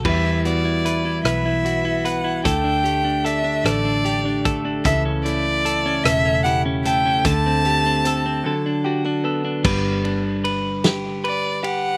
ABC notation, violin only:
X:1
M:6/8
L:1/8
Q:3/8=50
K:G
V:1 name="Violin"
e d2 e2 f | g2 e d2 z | e d2 e f g | a4 z2 |
z4 d f |]